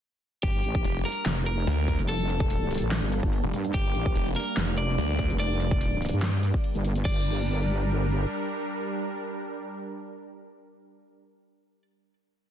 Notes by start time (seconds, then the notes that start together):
0.43 G1 G3 A#3 D4 G4, kick, closed hi-hat, ride
0.64 A1, closed hi-hat, shaker
0.75 kick
0.84 F1, closed hi-hat, ride
1.05 A#4, closed hi-hat
1.09 closed hi-hat
1.12 closed hi-hat
1.16 shaker
1.26 F1, snare, clap, closed hi-hat, ride
1.46 A#4, closed hi-hat, shaker
1.67 D2, ride
1.88 kick, closed hi-hat
1.99 F1, closed hi-hat
2.09 A4, closed hi-hat, ride
2.29 closed hi-hat, shaker
2.40 kick
2.50 closed hi-hat, ride
2.71 closed hi-hat
2.74 closed hi-hat
2.78 A1, closed hi-hat
2.82 shaker
2.91 snare, clap, closed hi-hat, ride
3.02 G1
3.12 closed hi-hat
3.23 G1, kick
3.33 ride
3.44 F1, shaker
3.53 G2, closed hi-hat
3.64 closed hi-hat, shaker
3.74 G1 G4, kick, closed hi-hat, ride
3.95 A1, closed hi-hat, shaker
4.06 kick
4.15 F1, closed hi-hat, ride
4.36 A#4, closed hi-hat
4.40 closed hi-hat
4.43 closed hi-hat
4.47 shaker
4.57 F1, snare, clap, closed hi-hat, ride
4.78 D5, closed hi-hat, shaker
4.98 D2, ride
5.19 kick, closed hi-hat
5.30 F1, closed hi-hat
5.40 D5, closed hi-hat, ride
5.60 closed hi-hat, shaker
5.71 kick
5.81 closed hi-hat, ride
6.02 closed hi-hat
6.05 closed hi-hat
6.09 closed hi-hat
6.13 G2, shaker
6.22 snare, clap, closed hi-hat, ride
6.43 closed hi-hat
6.54 kick
6.64 ride
6.75 G1, shaker
6.84 closed hi-hat
6.95 closed hi-hat, shaker
7.05 G1 G3 D4 A#4 D5, kick, crash